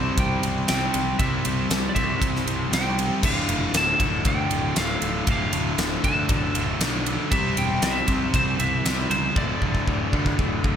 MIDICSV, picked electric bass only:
0, 0, Header, 1, 2, 480
1, 0, Start_track
1, 0, Key_signature, -1, "minor"
1, 0, Tempo, 510638
1, 1124, Time_signature, 4, 2, 24, 8
1, 10117, End_track
2, 0, Start_track
2, 0, Title_t, "Picked electric bass"
2, 0, Program_c, 0, 34
2, 0, Note_on_c, 0, 36, 98
2, 96, Note_off_c, 0, 36, 0
2, 163, Note_on_c, 0, 36, 97
2, 336, Note_off_c, 0, 36, 0
2, 412, Note_on_c, 0, 36, 88
2, 581, Note_off_c, 0, 36, 0
2, 661, Note_on_c, 0, 36, 91
2, 827, Note_off_c, 0, 36, 0
2, 893, Note_on_c, 0, 36, 81
2, 1062, Note_off_c, 0, 36, 0
2, 1120, Note_on_c, 0, 36, 92
2, 1294, Note_off_c, 0, 36, 0
2, 1373, Note_on_c, 0, 36, 93
2, 1542, Note_off_c, 0, 36, 0
2, 1600, Note_on_c, 0, 36, 94
2, 1774, Note_off_c, 0, 36, 0
2, 1835, Note_on_c, 0, 36, 90
2, 2011, Note_off_c, 0, 36, 0
2, 2081, Note_on_c, 0, 36, 97
2, 2254, Note_off_c, 0, 36, 0
2, 2314, Note_on_c, 0, 36, 83
2, 2489, Note_off_c, 0, 36, 0
2, 2557, Note_on_c, 0, 36, 85
2, 2904, Note_off_c, 0, 36, 0
2, 3036, Note_on_c, 0, 26, 86
2, 3211, Note_off_c, 0, 26, 0
2, 3267, Note_on_c, 0, 29, 86
2, 3445, Note_off_c, 0, 29, 0
2, 3512, Note_on_c, 0, 26, 93
2, 3688, Note_off_c, 0, 26, 0
2, 3761, Note_on_c, 0, 26, 92
2, 3934, Note_off_c, 0, 26, 0
2, 3994, Note_on_c, 0, 38, 92
2, 4169, Note_off_c, 0, 38, 0
2, 4241, Note_on_c, 0, 26, 83
2, 4414, Note_off_c, 0, 26, 0
2, 4489, Note_on_c, 0, 26, 96
2, 4659, Note_off_c, 0, 26, 0
2, 4722, Note_on_c, 0, 26, 80
2, 4895, Note_off_c, 0, 26, 0
2, 4959, Note_on_c, 0, 26, 97
2, 5132, Note_off_c, 0, 26, 0
2, 5199, Note_on_c, 0, 26, 93
2, 5372, Note_off_c, 0, 26, 0
2, 5435, Note_on_c, 0, 26, 95
2, 5610, Note_off_c, 0, 26, 0
2, 5679, Note_on_c, 0, 38, 95
2, 5853, Note_off_c, 0, 38, 0
2, 5917, Note_on_c, 0, 26, 102
2, 6091, Note_off_c, 0, 26, 0
2, 6148, Note_on_c, 0, 26, 85
2, 6326, Note_off_c, 0, 26, 0
2, 6388, Note_on_c, 0, 35, 93
2, 6737, Note_off_c, 0, 35, 0
2, 6877, Note_on_c, 0, 36, 97
2, 7051, Note_off_c, 0, 36, 0
2, 7114, Note_on_c, 0, 28, 97
2, 7289, Note_off_c, 0, 28, 0
2, 7354, Note_on_c, 0, 36, 98
2, 7529, Note_off_c, 0, 36, 0
2, 7596, Note_on_c, 0, 36, 95
2, 7770, Note_off_c, 0, 36, 0
2, 7840, Note_on_c, 0, 36, 102
2, 8013, Note_off_c, 0, 36, 0
2, 8083, Note_on_c, 0, 36, 89
2, 8255, Note_off_c, 0, 36, 0
2, 8326, Note_on_c, 0, 36, 90
2, 8497, Note_off_c, 0, 36, 0
2, 8558, Note_on_c, 0, 37, 87
2, 8732, Note_off_c, 0, 37, 0
2, 8797, Note_on_c, 0, 26, 93
2, 8971, Note_off_c, 0, 26, 0
2, 9041, Note_on_c, 0, 26, 87
2, 9214, Note_off_c, 0, 26, 0
2, 9280, Note_on_c, 0, 26, 95
2, 9454, Note_off_c, 0, 26, 0
2, 9520, Note_on_c, 0, 38, 92
2, 9694, Note_off_c, 0, 38, 0
2, 9762, Note_on_c, 0, 26, 93
2, 9935, Note_off_c, 0, 26, 0
2, 9999, Note_on_c, 0, 26, 85
2, 10117, Note_off_c, 0, 26, 0
2, 10117, End_track
0, 0, End_of_file